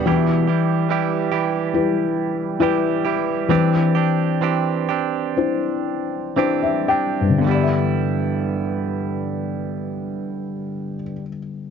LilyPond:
<<
  \new Staff \with { instrumentName = "Felt piano" } { \time 4/4 \key g \major \tempo 4 = 62 << { r1 | r2. r16 e''16 g''8 | r1 | } \\ { e2 <e' g' b'>4 <e' g' b'>4 | e2 <d' e' c''>4 <d' e' c''>4 | <g, d b g' d'' e''>1 | } >> }
  \new Staff \with { instrumentName = "Clean electric guitar" } { \time 4/4 \key g \major <e, b, e g e' g'>8 <e g e' g'>8 <e g e' g'>8 <e g e' g'>4. <e g e' g'>8 <e g e' g'>8 | <e c' d' g'>8 <c' d' g'>8 <e c' d' g'>8 <c' d' g'>4. <e c' d' g'>8 <c' d' g'>8 | <g, d e g b e'>1 | }
>>